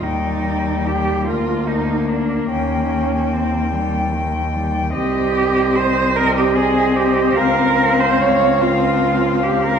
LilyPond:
<<
  \new Staff \with { instrumentName = "Cello" } { \time 6/8 \key ees \mixolydian \tempo 4. = 49 g''16 g''16 g''16 g''16 g''16 g''16 bes'16 bes'16 bes'16 bes'16 bes'16 bes'16 | g''16 g''16 g''16 g''16 g''16 g''16 g''16 g''16 g''16 g''16 g''16 g''16 | ees''16 ees''16 ees''16 ees''16 ees''16 ees''16 ees''16 ees''16 ees''16 ees''16 ees''16 ees''16 | f''16 f''16 f''16 f''16 f''16 f''16 f''16 f''16 f''16 f''16 f''16 f''16 | }
  \new Staff \with { instrumentName = "Cello" } { \time 6/8 \key ees \mixolydian ees'4 g'8 f'8 ees'8 d'8 | des'4 c'8 r4. | g'4 c''8 bes'16 g'16 aes'8 g'8 | bes'8. c''16 des''8 f'4 g'16 bes'16 | }
  \new Staff \with { instrumentName = "Cello" } { \clef bass \time 6/8 \key ees \mixolydian g4. bes4.~ | bes4. g8 ees8 g8 | c'2.~ | c'2. | }
  \new Staff \with { instrumentName = "Cello" } { \clef bass \time 6/8 \key ees \mixolydian ees,4. d,4. | ees,2. | c,2. | des,2. | }
>>